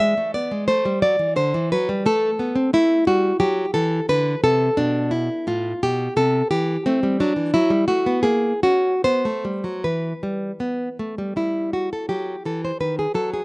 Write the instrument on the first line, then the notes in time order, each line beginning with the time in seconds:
nylon-string guitar
0.00 G#3 E5
0.17 A3
0.34 B3 D5
0.51 G#3
0.68 A3 C5
0.85 G3
1.02 F#3 D5
1.19 E3
1.36 D3 C5
1.54 E3
1.72 F#3 B4
1.89 G3
2.06 A3 A4
2.39 B3
2.56 C4
2.73 A3 E4
3.07 G3 F#4
3.40 F#3 G4
3.74 E3 A4
4.09 D3 B4
4.44 C3 A4
4.77 B2 D4
5.11 E4
5.47 A2 F4
5.83 B2 G4
6.17 C3 A4
6.51 E3 G4
6.86 A3 C4
7.03 G3
7.20 F#3 D4
7.36 E3
7.54 F#3 E4
7.70 G3
7.88 A3 F#4
8.06 B3
8.23 A#3 G#4
8.63 C#4 F#4
9.04 B3 C5
9.25 A3
9.45 G3
9.64 F#3
9.84 E3 B4
10.23 G3
10.60 B3
10.99 A3
11.18 G3
11.36 G3 E4
11.73 F#4
11.93 A4
12.09 F#3 G4
12.45 E3 A4
12.65 C5
12.80 D#3 B4
12.99 G#4
13.14 F#3 A4
13.34 G#4